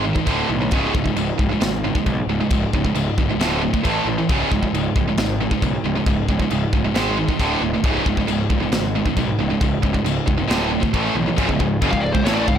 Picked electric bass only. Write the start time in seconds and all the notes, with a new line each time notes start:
Already playing: G#1
0.27 D1
0.49 B1
0.72 C#1
0.95 C#1
1.17 C#1
1.39 C#1
1.62 G#1
2.06 B1
2.27 C#1
2.51 C#1
2.74 C#1
2.94 C#1
3.18 C#1
3.38 D1
3.85 A1
4.06 A1
4.29 C#1
4.52 C#1
4.73 C#1
4.96 C#1
5.18 G#1
5.62 B1
5.85 C#1
6.07 C#1
6.29 C#1
6.51 C#1
6.73 C#1
6.95 G#1
7.40 D1
7.61 D1
7.84 C#1
8.06 C#1
8.28 C#1
8.50 C#1
8.73 G#1
9.17 B1
9.39 C#1
9.62 C#1
9.83 C#1
10.04 C#1
10.28 F1
10.50 D1
10.94 A1
11.15 B1
11.38 C#1
11.49 C#1
11.60 C#1
11.82 F#1
11.93 C#1
12.15 C#1
12.25 A1
12.48 C#1